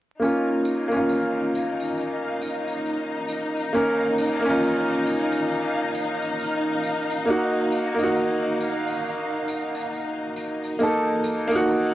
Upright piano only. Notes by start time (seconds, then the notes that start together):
0.20 A#3 C#4
0.24 F4
0.88 A#3
0.92 C#4
0.96 F4
3.73 A#3 C#4 A#4
4.41 A#3
4.45 C#4
4.50 F4
7.26 A#3 D#4
7.30 F#4
7.94 A#3
7.99 D#4
8.04 F#4
10.79 A#3 D#4
10.83 A4
11.47 A#3 D#4
11.56 F#4